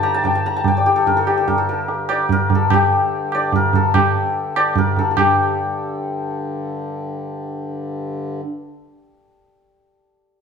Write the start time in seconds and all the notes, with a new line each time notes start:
Already playing: G2 D3 G4 D5 G5
0.03 A#5, tabla na
0.14 A5
0.24 G5, tabla tin, tabla ge
0.35 A5
0.46 A#5
0.56 A5
0.64 G5, tabla tin, tabla ge
0.77 D5
0.86 G4
0.96 A4
1.07 A#4, tabla tin, tabla ge
1.17 A4
1.27 G4, tabla na
1.37 A4
1.48 A#4, tabla tin, tabla ge
1.58 A4
1.69 A#4
1.88 tabla tin
2.09 D5, tabla na
2.29 A#4, tabla tin, tabla ge
2.50 tabla tin, tabla ge
2.55 A4
2.70 G4, tabla na, tabla ge
3.32 D5, tabla na
3.52 A#4, tabla tin, tabla ge
3.73 A4, tabla tin, tabla ge
3.94 G4, tabla na, tabla ge
4.56 D5, tabla na
4.76 A#4, tabla tin, tabla ge
4.96 A4, tabla tin, tabla ge
5.11 A4
5.16 G2 D3 G4, tabla na, tabla ge